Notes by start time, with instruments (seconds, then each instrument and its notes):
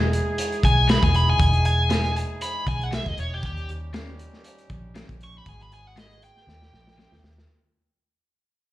Already playing: fingered electric bass E1, horn section E3 G#3 D#4 E4 G#4
0.13 closed hi-hat
0.38 closed hi-hat
0.52 closed hi-hat
0.63 fingered electric bass B1, lead electric guitar G#5, kick, closed hi-hat
0.87 clean electric guitar E3 G#3 B3 D#4, lead electric guitar B5, snare, closed hi-hat
1.03 fingered electric bass E1, lead electric guitar G#5, kick, closed hi-hat
1.14 lead electric guitar B5, closed hi-hat
1.30 lead electric guitar G#5
1.40 fingered electric bass E1, kick, closed hi-hat
1.53 closed hi-hat
1.65 lead electric guitar G#5, closed hi-hat
1.89 clean electric guitar E3 G#3 B3 D#4, snare, closed hi-hat
2.04 closed hi-hat
2.16 closed hi-hat
2.41 lead electric guitar B5, closed hi-hat
2.66 fingered electric bass B1, lead electric guitar G#5, kick, closed hi-hat
2.81 lead electric guitar F#5, closed hi-hat
2.91 clean electric guitar E3 G#3 B3 D#4, lead electric guitar E5, snare, closed hi-hat
3.06 fingered electric bass E1, lead electric guitar D#5, kick, closed hi-hat
3.17 fingered electric bass E1, lead electric guitar C#5, closed hi-hat
3.34 lead electric guitar G4
3.42 fingered electric bass D#2, horn section G3 C#4 G4, lead electric guitar G4, kick, closed hi-hat
3.57 closed hi-hat
3.69 closed hi-hat
3.93 clean electric guitar D#3 A#3 C#4 G4, snare, closed hi-hat
4.19 closed hi-hat
4.33 snare
4.44 closed hi-hat
4.58 closed hi-hat
4.70 fingered electric bass A#1, kick, closed hi-hat
4.95 clean electric guitar D#3 A#3 C#4 G4, snare, closed hi-hat
5.09 fingered electric bass A#1, kick, closed hi-hat
5.20 lead electric guitar C#6, closed hi-hat
5.38 lead electric guitar B5
5.46 fingered electric bass G#1, horn section G#3 B3 F#4 G#4, lead electric guitar G#5, kick, closed hi-hat
5.60 lead electric guitar B5, closed hi-hat
5.72 lead electric guitar G#5, closed hi-hat
5.87 lead electric guitar F#5
5.96 clean electric guitar G#3 D#4 F#4 B4, lead electric guitar D#5, snare, closed hi-hat
6.11 closed hi-hat
6.22 lead electric guitar G5, closed hi-hat
6.37 snare
6.47 fingered electric bass D#2, horn section G3 C#4 D#4 G4, snare
6.62 snare
6.72 fingered electric bass A#1, snare
6.87 snare
6.97 clean electric guitar D#3 A#3 C#4 G4, snare
7.12 fingered electric bass D#2, snare
7.24 fingered electric bass D#2, snare
7.38 snare